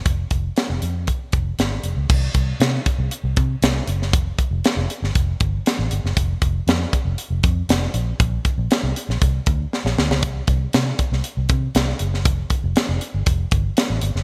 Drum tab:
CC |----------------|x---------------|----------------|----------------|
HH |x-x-x-x-x-x-x-x-|--x-x-x-x-x-x-x-|x-x-x-x-x-x-x-x-|x-x-x-x-x-x-x-x-|
SD |----o-------o---|----o-------o--o|----o--o----o--o|----o-------o---|
BD |o-o-----o-o-----|o-o---o---o-----|o-o-----o-o-----|o-o---o---o-----|

CC |----------------|----------------|----------------|
HH |x-x-x-x-x-x-----|x-x-x-x-x-x-x-x-|x-x-x-x-x-x-x-x-|
SD |----o--o----oooo|----o--o----o--o|----o-------o--o|
BD |o-o-----o-o-----|o-o---o---o-----|o-o-----o-o-----|